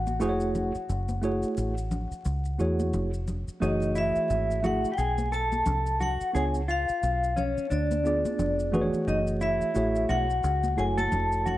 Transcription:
Already playing: A1 F#4 F#5
0.07 high conga, maracas
0.20 F1 A3 E4 F#4 G#4 C5, maracas
0.29 C#5
0.41 maracas
0.55 low conga, maracas
0.75 muted fingered electric bass stroke, maracas
0.89 F#1, maracas
1.09 high conga, maracas
1.22 A3 E4 F#4 G#4 C#5, maracas
1.43 muted fingered electric bass stroke, maracas
1.57 A1, maracas
1.78 maracas
1.91 low conga, maracas
2.11 muted fingered electric bass stroke, maracas
2.25 C#2, maracas
2.45 maracas
2.58 E2 A3 E4 F#4 G#4 C#5, maracas
2.80 high conga, maracas
2.93 F1, low conga, maracas
3.14 maracas
3.28 low conga, maracas
3.48 muted fingered electric bass stroke, maracas
3.60 F#1 E3 A3 D#4 F#4 G#4 C#5 D#5, maracas
3.82 maracas
3.95 E4 E5, maracas
4.16 muted fingered electric bass stroke, maracas
4.30 G#1, maracas
4.51 maracas
4.63 A3 E4 F#4 G#4 E5 F#5, low conga, maracas
4.84 muted fingered electric bass stroke, maracas
4.92 G4 G5
4.98 B1 G#4 G#5, maracas
5.18 high conga, maracas
5.32 A4 A5, maracas
5.52 high conga, maracas
5.66 C2, low conga, maracas
5.86 maracas
6.00 F#4 F#5, low conga, maracas
6.21 muted fingered electric bass stroke, maracas
6.33 C#2 B3 D4 F4 G#4 C#5 G#5, maracas
6.55 maracas
6.68 F4 F5, maracas
6.89 muted fingered electric bass stroke, maracas
7.03 B1, maracas
7.24 maracas
7.36 C#4 C#5, low conga, maracas
7.57 muted fingered electric bass stroke, maracas
7.70 D2 D4 D5, maracas
7.91 high conga, maracas
8.04 B3 D4 F4 G#4 D5, maracas
8.25 muted fingered electric bass stroke, high conga, maracas
8.39 F1, low conga, maracas
8.59 maracas
8.72 E3 A3 F#4 G#4 B4, low conga, maracas
8.81 C#5
8.94 maracas
9.07 F#1 D#4 D#5, maracas
9.27 maracas
9.41 E4 E5, maracas
9.61 muted fingered electric bass stroke, maracas
9.74 A1 A3 E4 F#4 G#4 C#5, maracas
9.96 maracas
10.09 B1 F#4 F#5, low conga, maracas
10.30 maracas
10.44 C#2, maracas
10.64 high conga, maracas
10.76 F#1 A3 E4 F#4 G#4 A4 C#5 G#5, maracas
10.97 A4 A5, high conga, maracas
11.12 F1, low conga, maracas
11.32 maracas
11.46 F#4 F#5, low conga, maracas

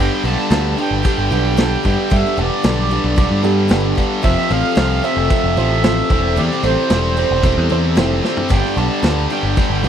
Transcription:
Already playing: G2 D3 G3 B3 D4 G4
0.00 G2 D3 G3 D4 G4 B4 G5
0.23 B1 G2 D3 G3 B3 D4 G4 B4 A5, crash
0.50 D2 G2 D3 G3 B3 D4 G4 B4, snare, crash
0.65 snare
0.71 A5
0.76 G2 D3 G3 B3 D4 G4 B4, crash
0.81 G5
0.91 G1
1.03 G2 D3 G3 B3 D4 G4 A4, kick, crash
1.18 G1
1.30 B1 G2 D3 G3 B3 D4 G4 B4, crash
1.57 G2 D3 G3 B3 D4 G4 A4, snare, crash
1.83 G2 D3 G3 B3 D4 G4 B4, kick, crash
2.10 G2 D3 G3 B3 D4 G4 B4 E5, kick, crash
2.25 snare
2.36 E1 G2 D3 G3 B3 D4 G4 B4 D5, crash
2.63 B1 G2 D3 G3 B3 D4 G4 B4, snare, crash
2.89 G2 D3 G3 B3 D4 G4 B4, crash
3.04 B1
3.16 G2 D3 G3 B3 D4 G4 A4, kick, crash
3.31 G2
3.42 G2 D3 G3 B3 D4 G4 A4, crash
3.68 G1 G2 D3 G3 B3 D4 G4 B4, snare, crash
3.95 G2 D3 G3 B3 D4 G4 B4, kick, crash
4.22 F1 F2 C3 F3 C4 F4 A4 C5 E5, kick, crash
4.37 snare
4.49 A1 F2 C3 F3 C4 F4 A4 C5 F5, crash
4.75 C2 F2 C3 F3 C4 F4 A4 C5, snare, crash
5.02 F2 C3 F3 C4 F4 A4 C5 E5, crash
5.17 F1
5.30 F2 C3 F3 C4 F4 A4 C5, kick, crash
5.44 F1
5.56 A1 F2 C3 F3 C4 F4 A4 C5, crash
5.84 F2 C3 F3 C4 F4 A4 C5, snare, crash
6.10 E1 C3 G3 C4 E4 A4 C5, kick, crash
6.36 E2 C3 E3 G3 C4 E4 A4 D5, crash
6.51 snare
6.62 A1 C3 G3 C4 E4 A4 C5, crash
6.90 E1 C3 E3 G3 C4 E4 A4 C5, snare, crash
7.04 snare
7.16 C3 G3 C4 E4 A4 C5, crash
7.31 E1
7.43 C3 G3 C4 E4 A4 C5, kick, crash
7.58 E2
7.69 E2 C3 G3 C4 E4 A4 C5, crash
7.95 F1 C3 E3 G3 C4 E4 A4 C5, snare, crash
8.23 C3 G3 C4 E4 A4 C5, snare
8.37 floor tom
8.49 G1 G2 D3 G3 B3 D4 G4 B4 G5, kick, splash, crash
8.65 snare
8.76 B1 G2 D3 G3 B3 D4 G4 B4 A5, crash
9.02 D2 G2 D3 G3 B3 D4 G4 B4, snare, crash
9.30 G2 D3 G3 B3 D4 G4 B4 G5, crash
9.43 G1
9.56 G2 D3 G3 B3 D4 G4 B4, kick, crash
9.70 G1
9.82 B1 G2 D3 G3 B3 D4 G4 B4, crash

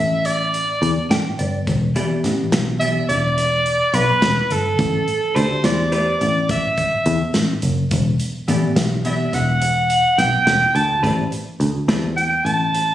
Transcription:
Already playing: A1 E5
0.25 D5, closed hi-hat
0.54 closed hi-hat
0.82 E2, closed hi-hat
1.10 A1 G5, snare, closed hi-hat
1.39 G1 D5, closed hi-hat
1.67 E1, kick, closed hi-hat
1.96 E3 B3 G4 D5, closed hi-hat
2.24 A1, snare, closed hi-hat
2.52 B1, snare, closed hi-hat
2.80 E3 B3 G4 D5 E5, closed hi-hat
3.09 E1 D5, closed hi-hat
3.38 closed hi-hat
3.66 closed hi-hat
3.94 B1 B4, closed hi-hat
4.22 E1, snare, closed hi-hat
4.50 G1 A4, closed hi-hat
4.79 A1, kick, closed hi-hat
5.08 closed hi-hat
5.35 D2 A3 G4 B4 C5 D5, closed hi-hat
5.64 E2 D5, snare, closed hi-hat
5.92 A3 G4 B4 C5 D5, closed hi-hat
6.21 A1, closed hi-hat
6.49 E5, kick, closed hi-hat
6.77 kick, closed hi-hat
7.06 E2, closed hi-hat
7.34 A1, snare, closed hi-hat
7.62 F#1, closed hi-hat
7.91 E1, kick, closed hi-hat
8.20 closed hi-hat
8.48 A1 E3 B3 G4 D5, closed hi-hat
8.76 B1, snare, closed hi-hat
9.05 E3 B3 G4 D5 E5, closed hi-hat
9.33 E1 F#5, snare, closed hi-hat
9.62 closed hi-hat
9.90 closed hi-hat
10.18 B1 G5, snare, closed hi-hat
10.47 E1, snare, closed hi-hat
10.75 D2 A5, closed hi-hat
11.03 A1 A3 G4 B4 C5 D5, kick, closed hi-hat
11.32 closed hi-hat
11.60 D2, closed hi-hat
11.88 E2 A3 G4 B4 C5 D5, snare, closed hi-hat
12.17 G5, closed hi-hat
12.45 A1 A5, closed hi-hat
12.75 closed hi-hat

